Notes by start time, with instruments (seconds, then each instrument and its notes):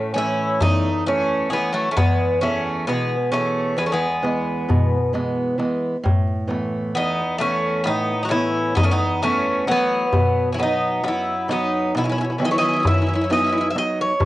Already playing: steel-string acoustic guitar A2, bouzouki A3 C#4
0.14 steel-string acoustic guitar E3 A3 C#4, bouzouki C#4, darbuka tek
0.18 bouzouki E4
0.60 steel-string acoustic guitar E2, bouzouki A3 D#4, darbuka dum
1.07 steel-string acoustic guitar E3 A3 C#4, bouzouki A3 C#4, darbuka tek
1.50 steel-string acoustic guitar E3 A3 C#4, bouzouki G#3 B3, darbuka tek
1.73 bouzouki F#3 A3
1.91 bouzouki A3 C#4
1.96 steel-string acoustic guitar E2, bouzouki G#3 B3, darbuka dum
2.20 darbuka tek
2.41 steel-string acoustic guitar E3 B3 G#4, bouzouki A3 C#4, darbuka tek
2.87 steel-string acoustic guitar B2, bouzouki G#3 B3, darbuka tek
3.32 steel-string acoustic guitar E3 B3 G#4, bouzouki A3 C#4, darbuka tek
3.77 steel-string acoustic guitar E2, bouzouki G#3 B3, darbuka tek
3.86 bouzouki A3 C#4
3.92 bouzouki G#3 B3
4.23 steel-string acoustic guitar E3 G#3 B3, darbuka tek
4.69 steel-string acoustic guitar B2, darbuka dum
5.13 steel-string acoustic guitar E3 G#3 B3, darbuka tek
5.58 steel-string acoustic guitar E3 G#3 B3, darbuka tek
6.03 steel-string acoustic guitar A2, darbuka dum
6.28 darbuka tek
6.47 steel-string acoustic guitar E3 A3 B3, darbuka tek
6.95 steel-string acoustic guitar E2, bouzouki B3 D#4, darbuka tek
7.19 darbuka tek
7.38 steel-string acoustic guitar E3 A3 B3, bouzouki A3 C#4, darbuka tek
7.84 steel-string acoustic guitar A2, bouzouki B3 D#4, darbuka tek
8.23 bouzouki D#4 F#4
8.29 steel-string acoustic guitar E3 A3 B3, bouzouki C#4 E4, darbuka tek
8.75 steel-string acoustic guitar E2, bouzouki B3 D#4, darbuka dum
8.83 bouzouki A3 C#4
8.91 bouzouki B3 D#4
9.22 steel-string acoustic guitar E3 A3 B3, bouzouki A3 C#4, darbuka tek
9.68 steel-string acoustic guitar E3 A3 B3, bouzouki F#3, darbuka tek
9.72 bouzouki B3
10.13 steel-string acoustic guitar B2, darbuka dum
10.52 bouzouki C#4 E4
10.59 steel-string acoustic guitar F#3 B3 D#5, bouzouki B3, darbuka tek
10.63 bouzouki D#4
11.03 steel-string acoustic guitar F#2, bouzouki B3, darbuka tek
11.08 bouzouki E4
11.26 darbuka tek
11.48 steel-string acoustic guitar F#3 B3 D#4, bouzouki B3 D#4, darbuka tek
11.94 steel-string acoustic guitar B2, bouzouki B3 E4, darbuka tek
12.04 bouzouki C#4 E4
12.09 bouzouki C#4 E4
12.17 bouzouki C#4 E4, darbuka tek
12.24 bouzouki C#4
12.30 bouzouki C#4 E4
12.38 steel-string acoustic guitar D#3 F#3 B3, bouzouki C#4 E4, darbuka tek
12.44 bouzouki C#4 E4 D#5
12.51 bouzouki C#4 E4 C#5
12.58 bouzouki C#4 E4 D#5
12.62 bouzouki E4, darbuka tek
12.68 bouzouki C#4
12.73 bouzouki C#4 E4
12.80 bouzouki C#4 E4
12.85 steel-string acoustic guitar F#2, bouzouki E4 E5, darbuka dum
12.91 bouzouki C#4 E4
12.98 bouzouki C#4 E4
13.07 bouzouki C#4 E4
13.13 bouzouki C#4 E4
13.21 bouzouki C#4 E4
13.29 steel-string acoustic guitar F#3 B3 D#4, bouzouki C#4 E4 D#5, darbuka tek
13.37 bouzouki C#4 E4
13.44 bouzouki C#4 E4
13.49 bouzouki C#4 E4
13.54 darbuka tek
13.58 bouzouki C#4 E4
13.70 bouzouki E5
13.75 steel-string acoustic guitar F#3 B3 D#4, bouzouki D#5, darbuka tek
13.99 bouzouki C#5, darbuka tek
14.20 steel-string acoustic guitar E3, darbuka dum